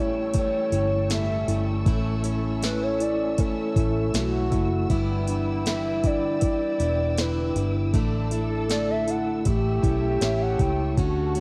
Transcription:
Already playing: fingered electric bass A1, steel-string acoustic guitar A2 E3 G3 C#4 E4, tine electric piano A3 E4, string section A4 G5 C#6 E6
0.00 soft synth lead C#5
0.34 steel-string acoustic guitar E3 G3 C#4 E4, tine electric piano A3, kick, open hi-hat
0.38 soft synth lead C#5
0.72 fingered electric bass G1, steel-string acoustic guitar G3 C#4 E4, tine electric piano E4, open hi-hat
1.10 steel-string acoustic guitar A2 E3 G3 C#4 E4, tine electric piano A3, soft synth lead E5, snare, open hi-hat
1.48 fingered electric bass G1, steel-string acoustic guitar G3 C#4 E4, tine electric piano E4, open hi-hat
1.86 fingered electric bass A1, steel-string acoustic guitar A2 E3 A3 C#4 E4, tine electric piano A3, french horn section C#4, string section E5, kick, open hi-hat
2.24 steel-string acoustic guitar A3 C#4 E4, tine electric piano E4, open hi-hat
2.62 steel-string acoustic guitar A2 E3 A3 E4, tine electric piano A3, soft synth lead B4, snare, open hi-hat
2.83 soft synth lead C#5
3.00 tine electric piano E4, soft synth lead D5, open hi-hat
3.37 steel-string acoustic guitar E3 A3 C#4 E4, tine electric piano A3, soft synth lead A4, kick, open hi-hat
3.76 fingered electric bass A1, steel-string acoustic guitar A3 C#4 E4, tine electric piano E4, kick, open hi-hat
4.14 fingered electric bass B1, steel-string acoustic guitar A2 E3 A3 C#4 E4, tine electric piano A3, french horn section F#4, snare, open hi-hat
4.51 fingered electric bass F#1, steel-string acoustic guitar A3 C#4 E4, tine electric piano E4, kick, open hi-hat
4.89 fingered electric bass G1, steel-string acoustic guitar G2 D3 E3 G3 B3 E4, tine electric piano G3, french horn section E4, string section B4 G5 D6, kick, open hi-hat
5.27 steel-string acoustic guitar E3 G3 B3 E4, tine electric piano D4, open hi-hat
5.65 steel-string acoustic guitar G2 D3 E3 G3 B3 E4, tine electric piano E4, soft synth lead E5, snare, open hi-hat
6.04 tine electric piano D4, soft synth lead D5, kick, open hi-hat
6.41 steel-string acoustic guitar E3 G3 B3 E4, tine electric piano E4, soft synth lead D5, kick, open hi-hat
6.79 fingered electric bass E1, steel-string acoustic guitar E3 G3 B3 E4, tine electric piano D4, open hi-hat
7.17 steel-string acoustic guitar G2 D3 E3 G3 B3 E4, tine electric piano E4, soft synth lead B4, snare, open hi-hat
7.55 fingered electric bass G1, steel-string acoustic guitar E3 G3 B3 E4, tine electric piano D4, open hi-hat
7.93 fingered electric bass A1, steel-string acoustic guitar A2 D3 A3 D4 E4, tine electric piano A3, french horn section A4, string section A4 E5, kick, open hi-hat
8.31 steel-string acoustic guitar A3 D4 E4, tine electric piano E4, open hi-hat
8.69 steel-string acoustic guitar A2 D3 A3 D4 E4, tine electric piano A3, soft synth lead D5, snare, open hi-hat
8.91 soft synth lead E5
9.07 tine electric piano E4, soft synth lead F#5, open hi-hat
9.45 fingered electric bass A1, steel-string acoustic guitar E3 A3 C#4 E4, tine electric piano A3, french horn section G4, string section A4 C#6, kick, open hi-hat
9.83 fingered electric bass B1, steel-string acoustic guitar A3 C#4 E4, tine electric piano E4, kick, open hi-hat
10.21 fingered electric bass A1, steel-string acoustic guitar A2 E3 A3 C#4 E4, tine electric piano C#5, soft synth lead E5, snare, open hi-hat
10.42 soft synth lead F#5
10.59 fingered electric bass C#2, steel-string acoustic guitar A3 C#4 E4, tine electric piano E4, soft synth lead G5, kick, open hi-hat
10.97 fingered electric bass D2, steel-string acoustic guitar D3 A3 C#4 F#4, tine electric piano D4, french horn section F#4, string section F#5 A5, kick, open hi-hat
11.35 tine electric piano A3, steel-string acoustic guitar C#4 F#4, open hi-hat

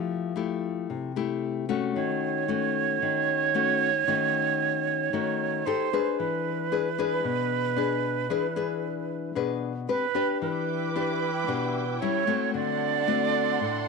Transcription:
Already playing: nylon-string guitar F3 A3 E4 G4
0.36 nylon-string guitar A3 E4 G4
0.90 nylon-string guitar C3
1.16 nylon-string guitar A3 E4 G4
1.69 nylon-string guitar A3 C#4 F#4
1.95 nylon-string guitar D#3, flute C#5
2.48 nylon-string guitar A3 C#4 F#4
3.02 nylon-string guitar D#3
3.54 nylon-string guitar A3 C#4 F#4
4.08 nylon-string guitar D#3 A3 C#4 F#4
5.13 nylon-string guitar D#3 A3 C#4 F#4
5.66 nylon-string guitar D#4 G4 A4, flute C5
5.93 nylon-string guitar D4 G#4 B4
6.19 nylon-string guitar E3, flute B4
6.72 nylon-string guitar D4 G#4 B4
6.98 nylon-string guitar D4 G#4 B4
7.24 nylon-string guitar B2
7.76 nylon-string guitar D4 G#4 B4
8.30 nylon-string guitar E3 D4 G#4 B4
8.56 nylon-string guitar D4 G#4 B4
9.35 nylon-string guitar B2 D4 G#4 B4
9.88 nylon-string guitar C4 G4 B4, flute B4
10.15 nylon-string guitar D4 G4 B4
10.42 nylon-string guitar E3, string section E4 B4 G5 D6, flute B4
10.95 nylon-string guitar D4 G4 B4
11.48 nylon-string guitar B2 D4 G4 B4
12.00 nylon-string guitar G3 C#4 E4, string section A4 C#6, flute C#5
12.27 nylon-string guitar A3 C4 F#4
12.53 nylon-string guitar D3, string section D4 A4 F#5 C6, flute D5
13.07 nylon-string guitar A3 C4 F#4
13.60 nylon-string guitar A2

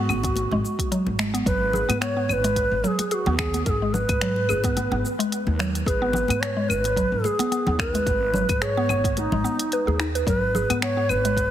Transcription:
Already playing: upright bass G#2, native american-style wooden flute F#4
0.09 upright bass G#1, synth pluck B3, claves, shaker
0.23 synth pluck B3, kick, closed hi-hat, muted conga, shaker
0.36 closed hi-hat, high conga, shaker
0.51 upright bass G#1, synth pluck G#3, low conga
0.65 high conga, shaker
0.79 kick, closed hi-hat, shaker
0.92 synth pluck F#3, closed hi-hat, shaker
1.06 upright bass G#1, high conga
1.19 synth pluck G#3, finger snap, muted conga, high conga, shaker
1.34 synth pluck B3, closed hi-hat, shaker
1.46 upright bass G#1, synth pluck F#3, native american-style wooden flute B4, kick, closed hi-hat, shaker
1.73 synth pluck G#4, low conga, shaker
1.89 upright bass G#2, synth pluck B3, closed hi-hat, high conga, claves, shaker
2.01 synth pluck B3, native american-style wooden flute C#5, finger snap, closed hi-hat, shaker
2.17 synth pluck B3
2.29 upright bass G#1, native american-style wooden flute C#5, claves, shaker
2.33 native american-style wooden flute B4
2.44 synth pluck G#3, closed hi-hat, muted conga, shaker
2.56 kick, closed hi-hat, shaker
2.72 upright bass G#1
2.83 synth pluck F#3, native american-style wooden flute A#4, muted conga, high conga, shaker
2.88 native american-style wooden flute G#4
2.99 closed hi-hat, muted conga, shaker
3.10 native american-style wooden flute F#4 G#4, synth pluck G#4, closed hi-hat, shaker
3.26 upright bass D#2, synth pluck B3, low conga
3.38 synth pluck B3, native american-style wooden flute G#4, finger snap, kick, claves, shaker
3.54 synth pluck B3, closed hi-hat, high conga, shaker
3.65 upright bass G#1, native american-style wooden flute A#4, kick, closed hi-hat, shaker
3.70 native american-style wooden flute G#4
3.82 synth pluck G#3
3.93 native american-style wooden flute B4, low conga, shaker
4.09 upright bass G#2, kick, closed hi-hat, high conga, claves, shaker
4.21 synth pluck F#3, finger snap, closed hi-hat, shaker
4.36 muted conga
4.49 upright bass G#1, synth pluck G#4, claves, shaker
4.64 synth pluck B3, kick, closed hi-hat, muted conga, shaker
4.77 synth pluck B3, closed hi-hat, high conga, shaker
4.91 upright bass G#1, synth pluck B3, low conga
5.05 high conga, shaker
5.19 synth pluck G#3, closed hi-hat, shaker
5.32 closed hi-hat, shaker
5.47 upright bass D#2, high conga
5.59 synth pluck F#3, finger snap, muted conga, shaker
5.75 closed hi-hat, shaker
5.86 upright bass G#1, synth pluck G#4, native american-style wooden flute B4, kick, closed hi-hat, shaker
6.02 synth pluck B3
6.13 synth pluck B3, low conga, shaker
6.28 upright bass G#2, synth pluck B3, closed hi-hat, high conga, claves, shaker
6.41 native american-style wooden flute C#5, finger snap, closed hi-hat, shaker
6.57 synth pluck G#3
6.69 upright bass G#1, native american-style wooden flute B4, claves, shaker
6.84 closed hi-hat, muted conga, shaker
6.96 synth pluck F#3, kick, closed hi-hat, shaker
7.12 upright bass G#1
7.24 native american-style wooden flute G#4, synth pluck G#4, muted conga, high conga, shaker
7.39 synth pluck B3, closed hi-hat, muted conga, shaker
7.52 synth pluck B3, closed hi-hat, shaker
7.67 upright bass D#2, synth pluck B3, low conga
7.79 native american-style wooden flute A#4, finger snap, kick, claves, shaker
7.92 synth pluck G#3, native american-style wooden flute B4, closed hi-hat, high conga, shaker
8.06 upright bass G#1, kick, closed hi-hat, shaker
8.34 synth pluck F#3, low conga, shaker
8.49 upright bass G#2, kick, closed hi-hat, high conga, claves, shaker
8.62 synth pluck G#4, native american-style wooden flute C#5, finger snap, closed hi-hat, shaker
8.77 synth pluck B3, muted conga
8.89 upright bass G#1, synth pluck B3, claves, shaker
9.04 synth pluck B3, kick, closed hi-hat, muted conga, shaker
9.17 native american-style wooden flute D#4, closed hi-hat, high conga, shaker
9.32 upright bass G#1, synth pluck G#3, low conga
9.44 synth pluck B3, high conga, shaker
9.59 closed hi-hat, shaker
9.72 synth pluck B4, closed hi-hat, shaker
9.87 upright bass D#2, synth pluck G#4, high conga
10.00 synth pluck D#4, finger snap, muted conga, shaker
10.15 synth pluck B4, closed hi-hat, shaker
10.27 upright bass G#1, synth pluck F#3, native american-style wooden flute B4, kick, closed hi-hat, shaker
10.55 synth pluck G#4, low conga, shaker
10.70 upright bass G#2, synth pluck B3, closed hi-hat, high conga, claves, shaker
10.82 synth pluck B3, native american-style wooden flute C#5, finger snap, closed hi-hat, shaker
10.97 synth pluck B3
11.09 upright bass G#1, native american-style wooden flute B4, claves, shaker
11.25 synth pluck G#3, closed hi-hat, muted conga, shaker
11.37 kick, closed hi-hat, shaker

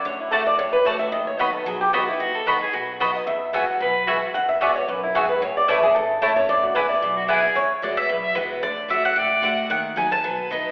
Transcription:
0.05 upright bass D2, steel-string acoustic guitar D3 C#5
0.20 steel-string acoustic guitar E4
0.31 steel-string acoustic guitar D3 A3 D4 F#4 A4, mandolin A3 F#4 D5 A5
0.47 steel-string acoustic guitar D5
0.58 upright bass A1, steel-string acoustic guitar A2 C#5
0.73 steel-string acoustic guitar B4
0.85 steel-string acoustic guitar D3 A3 D4 F#4 C#5, mandolin A3 F#4 D5 A5
0.99 steel-string acoustic guitar E5
1.11 upright bass D#2, steel-string acoustic guitar D#3 D#5
1.27 steel-string acoustic guitar C#5
1.39 steel-string acoustic guitar F#3 B3 D#4 B4, mandolin B3 F#4 D#5 B5
1.53 steel-string acoustic guitar A4
1.66 upright bass B2, steel-string acoustic guitar F#3 G#4
1.81 steel-string acoustic guitar G4
1.93 steel-string acoustic guitar F#3 B3 D#4 F#4 B4, mandolin B3 F#4 D#5 B5
2.08 steel-string acoustic guitar D#4 E4 B4
2.20 upright bass D#2, steel-string acoustic guitar D#3, fiddle F#4
2.35 fiddle A4
2.46 steel-string acoustic guitar F#3 B3 D#4 B4, mandolin B3 F#4 D#5 B5, fiddle B4
2.60 steel-string acoustic guitar D#4 B4, fiddle G#4
2.73 upright bass B2, steel-string acoustic guitar F#3, fiddle F#4
3.00 steel-string acoustic guitar F#3 B3 D#4 B4 F#5, mandolin B3 F#4 D#5 B5
3.15 steel-string acoustic guitar D#5
3.26 upright bass E2, steel-string acoustic guitar E2 E5
3.53 steel-string acoustic guitar E3 G#3 B3 F#4 F#5, mandolin B3 F#4 E5 G#5
3.80 upright bass B1, steel-string acoustic guitar B2, fiddle B4
4.07 steel-string acoustic guitar E3 G#3 B3 F#4, mandolin B3 F#4 E5 G#5, fiddle F#4
4.34 upright bass E2, steel-string acoustic guitar E2 F#5
4.49 steel-string acoustic guitar E5
4.61 steel-string acoustic guitar E3 G#3 B3 F#4 D5, mandolin B3 F#4 E5 G#5
4.76 steel-string acoustic guitar C#5
4.88 upright bass B1, steel-string acoustic guitar F#2 B4
5.03 steel-string acoustic guitar E4
5.15 steel-string acoustic guitar G#2 G#4, mandolin B3 F#4 E5 G#5
5.29 steel-string acoustic guitar B4
5.42 upright bass A1, steel-string acoustic guitar A2 C#5
5.57 steel-string acoustic guitar D5
5.68 steel-string acoustic guitar E3 A3 C#4 E4 B4, mandolin A3 E4 C#5 A5
5.83 steel-string acoustic guitar G#4
5.95 upright bass G#1, steel-string acoustic guitar E2 A4
6.22 upright bass F#1, steel-string acoustic guitar E3 A3 C#4 E4, mandolin A3 E4 C#5 A5
6.36 steel-string acoustic guitar C#4 E4 C#5
6.48 upright bass E1, steel-string acoustic guitar E2 D5
6.63 steel-string acoustic guitar F#4
6.74 steel-string acoustic guitar E3 G#3 B3 E4 B4, mandolin B3 E4 B4 G#5
6.89 steel-string acoustic guitar B3 E4 D5
7.02 upright bass B1, steel-string acoustic guitar B2
7.17 fiddle F#4
7.28 steel-string acoustic guitar E3 G#3 B3 E4, mandolin B3 E4 B4 G#5, fiddle G#4
7.43 steel-string acoustic guitar B3 E4
7.55 upright bass E2, steel-string acoustic guitar E2, mandolin C#5
7.82 upright bass A1, steel-string acoustic guitar E3 G#3 B3 F#4, mandolin D5
7.97 mandolin E5
8.09 upright bass B1, steel-string acoustic guitar B2, fiddle B4
8.23 fiddle E5
8.35 upright bass C#2, steel-string acoustic guitar E3 G#3 B3 F#4, fiddle B4
8.63 upright bass D2, steel-string acoustic guitar D3, mandolin D5
8.88 steel-string acoustic guitar D3 A3 D4 F#4, mandolin E5
9.05 mandolin F#5
9.16 upright bass C#2, steel-string acoustic guitar A2, fiddle D5
9.42 upright bass D2, steel-string acoustic guitar D3 A3 D4 F#4, fiddle F#5
9.69 upright bass D#2, steel-string acoustic guitar D#3, mandolin F#5
9.96 steel-string acoustic guitar F#3 B3 D#4 B4, mandolin G#5
10.11 steel-string acoustic guitar D#4 B4, mandolin A5
10.24 upright bass B2, steel-string acoustic guitar F#3, fiddle B4
10.51 steel-string acoustic guitar F#3 B3 D#4 B4, fiddle D#5

